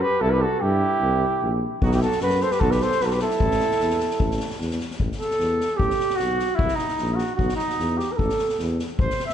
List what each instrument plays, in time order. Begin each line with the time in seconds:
0.01 flugelhorn G4, cornet B4
0.21 tuba C2, flugelhorn E4, cornet A4
0.30 flugelhorn G4, cornet B4
0.41 flugelhorn F#4, cornet A4
0.60 tuba G2, flugelhorn E4, cornet G4
1.02 tuba C2
1.42 tuba A#1
1.82 tuba B1, flugelhorn D#4, cornet F#4, kick
1.91 flugelhorn E4, cornet G4, snare
2.01 flugelhorn F#4, cornet A4, snare
2.12 snare
2.20 tuba F#2, flugelhorn F#4, cornet B4, snare
2.30 snare
2.41 flugelhorn A4, cornet C5, snare
2.51 flugelhorn G4, cornet B4, snare
2.60 tuba B1, flugelhorn F#4, cornet A4, kick
2.71 flugelhorn G4, cornet B4, snare
2.81 flugelhorn A4, cornet C5, snare
2.91 snare
3.00 tuba B1, flugelhorn F#4, cornet B4, snare
3.05 flugelhorn F#4, cornet A4
3.10 flugelhorn G4, cornet B4, snare
3.19 flugelhorn E4, cornet A4, snare
3.30 snare
3.40 tuba A1, kick
3.51 snare
3.60 snare
3.71 snare
3.80 tuba E2, snare
3.90 snare
4.00 snare
4.10 snare
4.20 tuba A1, kick
4.31 snare
4.40 snare
4.50 snare
4.60 tuba E2, snare
4.71 snare
4.80 snare
4.91 snare
4.99 tuba A1, kick
5.12 snare
5.19 flugelhorn A4, snare
5.30 snare
5.39 tuba E2, snare
5.60 snare
5.77 tuba A1, flugelhorn G4, kick
5.90 snare
6.00 snare
6.10 snare
6.16 flugelhorn F#4, snare
6.20 tuba B1
6.39 snare
6.55 flugelhorn E4, kick
6.60 tuba C2
6.68 snare
6.75 flugelhorn D#4, snare
6.88 snare
6.98 tuba A#1, snare
7.15 flugelhorn F#4, snare
7.35 tuba B1, flugelhorn F#4, kick
7.49 snare
7.56 flugelhorn D#4, snare
7.69 snare
7.79 tuba E2, snare
7.97 flugelhorn G4, snare
8.12 flugelhorn B4
8.17 tuba A1, flugelhorn A4, kick
8.29 snare
8.39 snare
8.49 snare
8.59 tuba E2, snare
8.79 snare
8.99 tuba A1, flugelhorn C5, kick
9.10 snare
9.19 snare
9.26 flugelhorn E5, snare